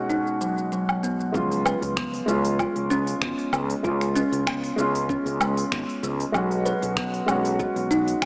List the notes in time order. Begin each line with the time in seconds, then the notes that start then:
Already playing: B2 G#3 C#4 F#4
0.10 D#4, shaker
0.27 shaker
0.41 F#3, shaker
0.58 shaker
0.72 F#3, shaker
0.89 low woodblock, shaker
1.03 B3, shaker
1.20 shaker
1.32 C#2 F3 G#3 C#4, kick, shaker
1.36 F4
1.51 open hi-hat, shaker
1.65 B4, low woodblock, shaker
1.82 C#2, open hi-hat, udu, shaker
1.97 B3, finger snap, kick, shaker
2.14 open hi-hat
2.26 C#2 G#3 C#4, shaker
2.30 F4
2.45 open hi-hat, shaker
2.59 F4, kick, low woodblock, shaker
2.76 C#2, open hi-hat
2.90 C#4, shaker
3.07 open hi-hat, shaker
3.22 G#1 B3, finger snap, kick, shaker
3.38 open hi-hat, shaker
3.53 C#2 G#3, low woodblock, shaker
3.70 open hi-hat, shaker
3.83 C#2 G#3 C#4 F4, kick, shaker
4.01 finger snap, open hi-hat, shaker
4.16 C#4, shaker
4.32 C#2, open hi-hat, udu, shaker
4.47 B3, finger snap, kick, low woodblock, shaker
4.64 open hi-hat
4.76 C#2 G#3 C#4 F4, shaker
4.94 open hi-hat, udu, shaker
5.09 C#4, kick, shaker
5.26 C#2, open hi-hat, shaker
5.41 G#3, low woodblock, shaker
5.57 open hi-hat, shaker
5.72 G#1 B3, finger snap, kick, shaker
5.89 open hi-hat, shaker
6.03 C#2 G#3, shaker
6.20 open hi-hat, shaker
6.32 B1 F#3 G#3 C#4, kick, low woodblock, shaker
6.37 F#4
6.51 open hi-hat, shaker
6.66 B4, shaker
6.82 B1, open hi-hat, udu, shaker
6.97 B3, finger snap, kick, shaker
7.14 open hi-hat
7.26 B1 G#3 C#4, low woodblock, shaker
7.30 F#4
7.45 open hi-hat, shaker
7.59 F#4, kick, shaker
7.76 B1, open hi-hat
7.91 D#4, shaker
8.08 open hi-hat, shaker
8.22 F#1 B3, finger snap, kick, low woodblock